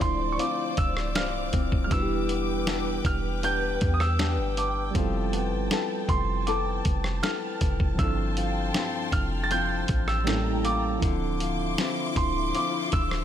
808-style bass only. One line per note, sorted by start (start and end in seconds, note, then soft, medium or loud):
0.01 0.38 D1 loud
0.78 1.17 D1 loud
1.16 1.51 C1 medium
1.54 1.72 D1 loud
1.72 1.90 D1 loud
1.91 3.01 E1 loud
3.05 3.78 E1 medium
3.82 4.39 E2 loud
4.38 4.92 G1 loud
4.95 5.53 F1 loud
5.52 5.70 G1 loud
6.09 6.82 F1 loud
6.86 7.22 F1 loud
7.62 7.79 F1 loud
7.80 7.98 F1 loud
7.99 8.72 G1 loud
9.13 9.86 F1 loud
9.89 10.99 A1 loud
11.03 11.75 D1 loud
12.16 12.53 D1 loud
12.93 13.24 D1 loud